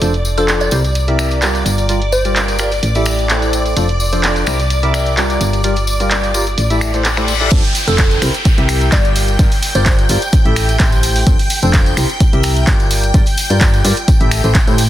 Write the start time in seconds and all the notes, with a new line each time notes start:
0.01 F1 F3 D4 F4 A4 C5 D5, closed hi-hat, tambourine
0.14 closed hi-hat
0.25 tambourine
0.38 F3 D4 F4 A4 C5, closed hi-hat, tambourine
0.48 clap, closed hi-hat, tambourine
0.60 D5, closed hi-hat, tambourine
0.71 C2 C3 E4 G4 A#4 C5, closed hi-hat, tambourine
0.84 closed hi-hat, tambourine
0.95 closed hi-hat, tambourine
1.08 C3 E4 G4 A#4 E5, closed hi-hat
1.19 finger snap, closed hi-hat, tambourine
1.31 closed hi-hat, tambourine
1.42 G3 F4 G4 A#4 D5, clap, closed hi-hat, tambourine
1.55 closed hi-hat, tambourine
1.66 G1, closed hi-hat, tambourine
1.78 closed hi-hat, tambourine
1.89 G3 F4 G4 A#4 D5, closed hi-hat, tambourine
2.02 closed hi-hat
2.12 C5, tambourine
2.25 G3 F4 G4 A#4 D5, closed hi-hat, tambourine
2.36 clap, closed hi-hat, tambourine
2.48 closed hi-hat, tambourine
2.59 F4 G4 A#4 D5, finger snap, closed hi-hat, tambourine
2.71 closed hi-hat, tambourine
2.83 A1, closed hi-hat, tambourine
2.95 A3 E4 G4 A4 E5, closed hi-hat, tambourine
3.06 finger snap, closed hi-hat, tambourine
3.19 closed hi-hat, tambourine
3.29 A3 E4 G4 A4 C5, clap, closed hi-hat, tambourine
3.42 closed hi-hat, tambourine
3.53 closed hi-hat, tambourine
3.66 closed hi-hat, tambourine
3.76 F1 F3 D4 F4 A4 C5, closed hi-hat, tambourine
3.89 closed hi-hat
4.00 tambourine
4.13 F3 D4 F4 A4 C5, closed hi-hat, tambourine
4.23 clap, closed hi-hat, tambourine
4.36 closed hi-hat, tambourine
4.46 C2 C3 E4 G4 A#4 C5, finger snap, closed hi-hat, tambourine
4.59 closed hi-hat, tambourine
4.70 closed hi-hat, tambourine
4.83 C3 E4 G4 A#4 E5, closed hi-hat
4.94 finger snap, closed hi-hat, tambourine
5.06 closed hi-hat, tambourine
5.17 G3 F4 G4 A#4 D5, clap, closed hi-hat, tambourine
5.30 closed hi-hat, tambourine
5.41 G1, closed hi-hat, tambourine
5.53 closed hi-hat, tambourine
5.64 G3 F4 G4 A#4 D5, closed hi-hat, tambourine
5.76 closed hi-hat, tambourine
5.87 closed hi-hat, tambourine
6.00 G3 F4 G4 A#4 D5, closed hi-hat, tambourine
6.11 clap, closed hi-hat, tambourine
6.23 closed hi-hat, tambourine
6.34 F4 G4 A#4 D5, closed hi-hat, tambourine
6.47 closed hi-hat
6.58 A1, closed hi-hat, tambourine, reverse cymbal
6.70 A3 E4 G4 A4 E5, closed hi-hat, tambourine
6.81 finger snap, closed hi-hat, tambourine
6.94 A3 E4 G4 A4 C5, closed hi-hat, tambourine
7.05 clap, closed hi-hat, tambourine
7.17 A3 E4 G4 A4 C5, finger snap, closed hi-hat, tambourine
7.28 closed hi-hat, tambourine
7.41 E4 G4 A4 D5, closed hi-hat, tambourine
7.51 F1 F3 D4 F4 A4 C5 G5, kick, closed hi-hat, tambourine, crash, downlifter
7.64 open hi-hat
7.75 open hi-hat, tambourine
7.88 F1 F3 D4 F4 A4 C5, closed hi-hat, tambourine
7.98 kick, clap, closed hi-hat, tambourine
8.11 closed hi-hat, tambourine
8.22 C2 C3 E4 G4 A#4 C5, finger snap, open hi-hat, tambourine
8.34 closed hi-hat, tambourine
8.45 kick, closed hi-hat, tambourine
8.58 C2 C3 E4 G4 A#4 E5, closed hi-hat
8.69 finger snap, open hi-hat, tambourine
8.81 closed hi-hat, tambourine
8.92 G1 G3 F4 G4 A#4 D5, kick, clap, closed hi-hat, tambourine
9.05 closed hi-hat, tambourine
9.16 open hi-hat, tambourine
9.28 closed hi-hat, tambourine
9.39 G1 G3 F4 G4 A#4 D5, kick, closed hi-hat, tambourine
9.52 open hi-hat, tambourine
9.63 open hi-hat, tambourine
9.75 G1 G3 F4 G4 A#4 C5 D5, closed hi-hat, tambourine
9.86 kick, clap, closed hi-hat, tambourine
9.98 closed hi-hat, tambourine
10.09 G1 F4 G4 A#4 D5, open hi-hat, tambourine
10.22 closed hi-hat, tambourine
10.33 kick, closed hi-hat, tambourine
10.45 A1 A3 E4 G4 A4 E5, closed hi-hat
10.56 finger snap, open hi-hat, tambourine
10.69 closed hi-hat, tambourine
10.80 A1 A3 E4 G4 A4 C5, kick, clap, closed hi-hat, tambourine
10.92 closed hi-hat, tambourine
11.03 open hi-hat, tambourine
11.16 open hi-hat, tambourine
11.26 F1 F3 D4 F4 A4 C5, kick, closed hi-hat, tambourine
11.39 open hi-hat
11.50 open hi-hat, tambourine
11.62 F1 F3 D4 F4 A4 C5, closed hi-hat, tambourine
11.74 kick, clap, closed hi-hat, tambourine
11.86 closed hi-hat, tambourine
11.97 C2 C3 E4 G4 A#4 C5, finger snap, open hi-hat, tambourine
12.10 closed hi-hat, tambourine
12.20 kick, closed hi-hat, tambourine
12.33 C2 C3 E4 G4 A#4 E5, closed hi-hat
12.43 finger snap, open hi-hat, tambourine
12.57 closed hi-hat, tambourine
12.67 G1 G3 F4 G4 A#4 D5, kick, clap, closed hi-hat, tambourine
12.80 closed hi-hat, tambourine
12.91 open hi-hat, tambourine
13.03 closed hi-hat, tambourine
13.14 G1 G3 F4 G4 A#4 D5, kick, closed hi-hat, tambourine
13.26 open hi-hat, tambourine
13.37 open hi-hat, tambourine
13.50 G2 G3 F4 G4 A#4 D5, closed hi-hat, tambourine
13.61 kick, clap, closed hi-hat, tambourine
13.73 closed hi-hat, tambourine
13.85 G2 F4 G4 A#4 D5, open hi-hat, tambourine
13.97 closed hi-hat, tambourine
14.08 kick, closed hi-hat, tambourine
14.21 A1 A3 E4 G4 A4 E5, closed hi-hat
14.31 finger snap, open hi-hat, tambourine
14.44 A1 A3 E4 G4 A4 C5, closed hi-hat, tambourine
14.55 kick, clap, closed hi-hat, tambourine
14.67 A2 A3 E4 G4 A4 C5, closed hi-hat, tambourine
14.78 open hi-hat, tambourine